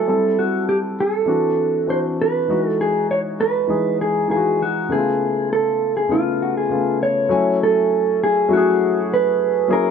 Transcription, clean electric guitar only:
0, 0, Header, 1, 2, 480
1, 0, Start_track
1, 0, Tempo, 601805
1, 57, Time_signature, 4, 2, 24, 8
1, 7901, End_track
2, 0, Start_track
2, 0, Title_t, "Clean electric guitar"
2, 0, Program_c, 0, 27
2, 0, Note_on_c, 0, 69, 88
2, 309, Note_on_c, 0, 66, 80
2, 319, Note_off_c, 0, 69, 0
2, 546, Note_off_c, 0, 66, 0
2, 549, Note_on_c, 0, 67, 89
2, 612, Note_off_c, 0, 67, 0
2, 801, Note_on_c, 0, 69, 90
2, 1479, Note_off_c, 0, 69, 0
2, 1517, Note_on_c, 0, 72, 88
2, 1579, Note_off_c, 0, 72, 0
2, 1767, Note_on_c, 0, 71, 88
2, 2134, Note_off_c, 0, 71, 0
2, 2134, Note_on_c, 0, 69, 88
2, 2238, Note_off_c, 0, 69, 0
2, 2241, Note_on_c, 0, 68, 88
2, 2477, Note_off_c, 0, 68, 0
2, 2480, Note_on_c, 0, 73, 96
2, 2542, Note_off_c, 0, 73, 0
2, 2716, Note_on_c, 0, 71, 91
2, 3198, Note_off_c, 0, 71, 0
2, 3201, Note_on_c, 0, 68, 86
2, 3430, Note_off_c, 0, 68, 0
2, 3440, Note_on_c, 0, 68, 94
2, 3677, Note_off_c, 0, 68, 0
2, 3689, Note_on_c, 0, 66, 82
2, 3921, Note_off_c, 0, 66, 0
2, 3925, Note_on_c, 0, 68, 85
2, 4406, Note_off_c, 0, 68, 0
2, 4409, Note_on_c, 0, 69, 84
2, 4756, Note_off_c, 0, 69, 0
2, 4759, Note_on_c, 0, 68, 74
2, 4873, Note_off_c, 0, 68, 0
2, 4879, Note_on_c, 0, 65, 78
2, 5124, Note_on_c, 0, 66, 69
2, 5236, Note_off_c, 0, 66, 0
2, 5243, Note_on_c, 0, 68, 71
2, 5557, Note_off_c, 0, 65, 0
2, 5567, Note_off_c, 0, 68, 0
2, 5605, Note_on_c, 0, 73, 88
2, 6086, Note_off_c, 0, 73, 0
2, 6089, Note_on_c, 0, 69, 82
2, 6565, Note_off_c, 0, 69, 0
2, 6568, Note_on_c, 0, 68, 84
2, 6800, Note_off_c, 0, 68, 0
2, 6805, Note_on_c, 0, 66, 88
2, 7284, Note_off_c, 0, 66, 0
2, 7287, Note_on_c, 0, 71, 95
2, 7756, Note_off_c, 0, 71, 0
2, 7759, Note_on_c, 0, 70, 90
2, 7901, Note_off_c, 0, 70, 0
2, 7901, End_track
0, 0, End_of_file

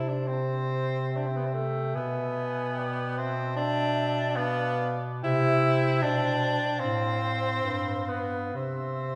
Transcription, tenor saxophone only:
0, 0, Header, 1, 2, 480
1, 0, Start_track
1, 0, Key_signature, 0, "major"
1, 0, Tempo, 829876
1, 1132, Time_signature, 4, 2, 24, 8
1, 1605, Tempo, 793651
1, 2565, Tempo, 870827
1, 3045, Tempo, 782269
1, 4005, Tempo, 833333
1, 4485, Tempo, 920245
1, 5279, End_track
2, 0, Start_track
2, 0, Title_t, "Tenor saxophone"
2, 0, Program_c, 0, 66
2, 46, Note_on_c, 0, 62, 80
2, 161, Note_on_c, 0, 60, 98
2, 170, Note_off_c, 0, 62, 0
2, 674, Note_on_c, 0, 62, 73
2, 682, Note_off_c, 0, 60, 0
2, 734, Note_on_c, 0, 60, 72
2, 742, Note_off_c, 0, 62, 0
2, 785, Note_on_c, 0, 59, 75
2, 794, Note_off_c, 0, 60, 0
2, 838, Note_on_c, 0, 60, 74
2, 846, Note_off_c, 0, 59, 0
2, 893, Note_on_c, 0, 57, 90
2, 902, Note_off_c, 0, 60, 0
2, 1128, Note_on_c, 0, 59, 101
2, 1136, Note_off_c, 0, 57, 0
2, 1848, Note_on_c, 0, 60, 114
2, 1857, Note_off_c, 0, 59, 0
2, 2078, Note_off_c, 0, 60, 0
2, 2081, Note_on_c, 0, 62, 122
2, 2566, Note_on_c, 0, 59, 121
2, 2574, Note_off_c, 0, 62, 0
2, 2887, Note_off_c, 0, 59, 0
2, 3047, Note_on_c, 0, 64, 127
2, 3528, Note_on_c, 0, 62, 126
2, 3537, Note_off_c, 0, 64, 0
2, 4007, Note_on_c, 0, 60, 122
2, 4015, Note_off_c, 0, 62, 0
2, 4721, Note_on_c, 0, 59, 90
2, 4729, Note_off_c, 0, 60, 0
2, 4963, Note_off_c, 0, 59, 0
2, 4966, Note_on_c, 0, 60, 91
2, 5279, Note_off_c, 0, 60, 0
2, 5279, End_track
0, 0, End_of_file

